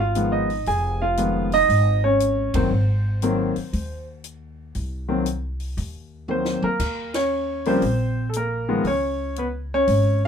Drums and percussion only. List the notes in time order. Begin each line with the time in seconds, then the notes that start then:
0.15 closed hi-hat
0.50 open hi-hat
0.66 open hi-hat
1.17 closed hi-hat
1.52 open hi-hat
1.70 open hi-hat
2.20 closed hi-hat
2.54 kick, ride
3.22 closed hi-hat
3.56 open hi-hat
3.73 open hi-hat
4.24 closed hi-hat
4.75 open hi-hat
5.26 closed hi-hat
5.60 open hi-hat
5.78 open hi-hat
6.28 mid tom
6.45 snare
6.62 mid tom
6.80 kick, snare, crash
7.14 snare, ride
7.65 open hi-hat
7.82 open hi-hat
8.33 closed hi-hat
8.85 open hi-hat
9.36 closed hi-hat
9.88 open hi-hat